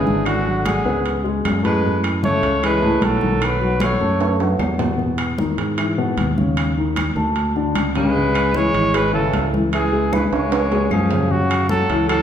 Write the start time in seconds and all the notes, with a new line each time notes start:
Already playing: G#1 E3 G#4
0.06 D3 D4, high conga
0.26 D3 F#4, high conga, high timbale, claves
0.45 F#3 F#4, high conga
0.65 D3 G#4, high conga, high timbale, claves
0.85 C#2 B3 B4, high conga
1.06 high conga, high timbale
1.24 G#3 G#4, high conga
1.45 F#2, high conga, high timbale, low timbale, claves
1.63 A2 G#3 A3 B4, high conga, high timbale
1.83 A2 A3, high conga
2.04 high conga, high timbale, claves
2.23 C#3 A3 C#4 C#5, high conga
2.43 C#2, high conga, high timbale
2.62 E3 G#3 E4 B4, high conga, high timbale, claves
2.82 A2 A3, high conga
3.02 B1 F#3 A4, high conga, high timbale
3.21 D#3 D#4, high conga
3.42 F#3 B4, high conga, high timbale, claves
3.60 F#3 F#4, high conga
3.80 A3, high conga, high timbale, claves
3.84 C#5
4.00 F#2 A3 A4, high conga
4.21 high conga, high timbale
4.40 F#3 F#4, high conga, high timbale
4.59 E2, high conga, low timbale, claves
4.79 B2 B3, high conga, low timbale
4.98 B2 B3, high conga
5.18 high conga, high timbale, claves
5.38 D#3 D#4, high conga
5.58 G#2, high conga, high timbale
5.77 E3 E4, high conga, high timbale, claves
5.98 B2 B3, high conga
6.17 D#2, high conga, high timbale
6.38 C#3 C#4, high conga
6.57 high conga, high timbale, claves
6.77 D#3 D#4, high conga
6.96 high conga, high timbale, claves
7.16 D2 A3 A4, high conga
7.36 high conga, high timbale
7.56 D3 D4, high conga
7.75 C#2, high conga, high timbale, claves
7.95 C#3 G#3 C#4 B4, high conga, high timbale
8.16 C#3 C#4, high conga
8.34 high conga, high timbale, claves
8.54 E3 G#3 E4 C#5, high conga
8.73 G#1, high conga, high timbale
8.94 G#3 G#4 B4, high conga, high timbale, claves
9.13 C#3 E3 C#4 A4, high conga
9.33 C#2, high conga, high timbale, low timbale
9.54 E3 E4, high conga
9.73 E3 G#4, high conga, high timbale, claves
9.92 G#3 G#4, high conga
10.13 G#3 B4, high conga, high timbale, claves
10.25 G#3 B4
10.32 C#2 G#3 C#4 C#5, high conga, high timbale
10.51 high conga, high timbale
10.72 G#3 G#4, high conga, low timbale
10.91 F#2 F3 G#4, high conga, low timbale, claves
11.11 C#3 C#4, high conga, low timbale
11.30 C#3 C#4 F#4, high conga
11.50 high conga, high timbale, claves
11.69 F#3 F#4 A4, high conga
11.90 C#2 E3 E4, high conga, high timbale
12.09 F#3 A4, high conga, high timbale, claves